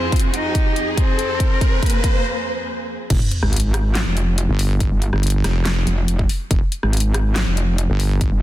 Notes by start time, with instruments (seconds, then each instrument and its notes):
Already playing: string section F2 F3 C4 G#4, cello C4, riser
0.12 kick, closed hi-hat
0.16 closed hi-hat
0.20 closed hi-hat
0.34 cello D#4, closed hi-hat
0.55 kick, closed hi-hat
0.76 closed hi-hat
0.97 cello C4, kick, closed hi-hat
1.19 closed hi-hat
1.40 kick, closed hi-hat
1.61 kick, closed hi-hat
1.83 cello A#3, kick, closed hi-hat
1.86 closed hi-hat
1.90 closed hi-hat
2.04 kick, closed hi-hat
3.10 wobble bass F1, kick, closed hi-hat, crash, sub drop
3.31 closed hi-hat
3.43 wobble bass G#1, cross-stick
3.53 closed hi-hat
3.56 closed hi-hat
3.60 closed hi-hat
3.74 cross-stick, closed hi-hat
3.95 snare, clap, closed hi-hat
4.07 wobble bass F1
4.17 closed hi-hat
4.38 closed hi-hat
4.49 wobble bass G1
4.59 open hi-hat
4.80 kick, closed hi-hat
4.92 wobble bass G1
5.02 closed hi-hat
5.13 wobble bass G1, cross-stick
5.23 closed hi-hat
5.27 closed hi-hat
5.30 closed hi-hat
5.44 wobble bass F1, cross-stick, snare, closed hi-hat
5.66 snare, clap, closed hi-hat
5.87 wobble bass F1, closed hi-hat
6.08 closed hi-hat
6.19 kick
6.29 open hi-hat
6.51 wobble bass F1, kick, closed hi-hat
6.72 closed hi-hat
6.83 wobble bass G#1, cross-stick
6.93 closed hi-hat
6.97 closed hi-hat
7.00 closed hi-hat
7.14 cross-stick, closed hi-hat
7.36 snare, clap, closed hi-hat
7.47 wobble bass F1
7.57 closed hi-hat
7.78 closed hi-hat
7.90 wobble bass G1
8.00 open hi-hat
8.21 kick, closed hi-hat
8.32 wobble bass G1